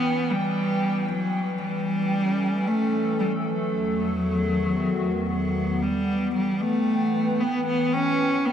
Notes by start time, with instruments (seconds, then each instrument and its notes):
Already playing: analog synth pad E3 B3 B4 G5, cello B3
0.30 cello G3
1.09 cello F#3
1.62 cello G3
1.68 analog synth pad C#4
1.81 analog synth pad A3
2.06 analog synth pad A4
2.67 cello A3
3.20 cello G3
3.46 cello F#3
3.72 analog synth pad E2
3.91 analog synth pad D#3
4.00 analog synth pad B3
4.29 analog synth pad F#4
5.30 cello F#3
5.82 analog synth pad E3, cello G3
6.07 analog synth pad G5
6.35 cello G3, analog synth pad B4
6.62 cello A3
7.40 cello B3
7.67 cello B3
7.93 cello C#4
8.46 cello B3